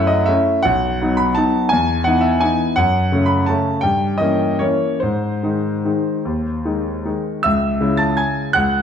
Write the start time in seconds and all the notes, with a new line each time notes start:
Already playing: F#2 A3 C#4 E4 E5 F#5
0.07 D#5
0.26 A3 C#4 E4 E5
0.63 B1 F#5
1.01 F#3 B3 D#4
1.17 B5
1.35 F#3 B3 D#4 A5
1.69 E2 G#5
2.04 E3 B3 D#4 F#5
2.21 E5
2.40 E3 B3 D#4 G#5
2.76 F#2 F#5
3.12 C#3 A3 C#4
3.26 B5
3.46 C#3 A3 C#4 A5
3.81 G2 G5
4.18 E3 A#3 C#4 D#5
4.59 E3 A#3 C#4 C#5
5.00 G#2 C5
5.43 D#3 G#3 D#4
5.85 D#3 G#3 D#4
6.25 D#2
6.65 D#3 G#3 D#4
7.05 D#3 G#3 D#4
7.43 C#2 E5 E6
7.80 C#3 G#3 E4
7.97 A5 A6
8.17 G#5 G#6
8.53 C#2 F#5 F#6